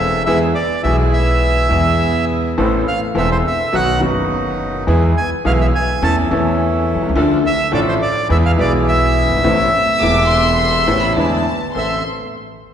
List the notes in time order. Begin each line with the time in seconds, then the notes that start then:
Already playing: E1 E2 E3 A3 C4 E4 A4 E5
0.26 E2 E3 G#3 B3 E4 G#4 E5
0.55 D5
0.83 B1 B2 E3 G#3 B3 E4 G#4 E5
1.13 E5
1.69 E2 E3 G#3 B3 E4 G#4
2.57 A1 A2 E3 B3 C4 A4
2.88 F5
3.15 E1 E2 E3 B3 C4 A4 E5
3.32 C5
3.47 E5
3.72 B1 B2 D#3 F#3 B3 D#4 F#4 F#5
3.99 F#1 F#2 D#3 F#3 B3 D#4 F#4
4.87 E2 E3 G#3 B3 E4 G#4
5.18 G#5
5.45 B1 B2 E3 G#3 B3 E4 G#4 F5
5.61 E5
5.75 G#5
6.02 E2 E3 A3 C#4 E4 A4 A5
6.30 E2 E3 A3 C#4 E4 A4
6.94 B1
7.02 C2
7.09 C#2
7.16 D2 D3 F3 A3 D4 F4 A4
7.46 E5
7.72 A1 A2 F3 A3 D4 F4 A4 D5
7.88 C5
8.02 D5
8.29 E2 E3 G#3 B3 E4 G#4 E5
8.45 F5
8.56 B1 B2 E3 G#3 B3 E4 G#4 D5
8.88 E5
9.22 F#1
9.29 G1
9.36 G#1
9.43 A1 A2 C3 A3 B3 C4 E4 A4
9.94 E6
9.99 E1 E2 C3 A3 B3 E4 A4 D6
10.28 C6
10.58 C6
10.87 A1 A2 C3 A3 B3 C4 E4 A4
11.01 B5
11.16 E2 D3 E3 G#3 B3 D4 E4 A5
11.75 A1 B3 C4 A4 E5 C6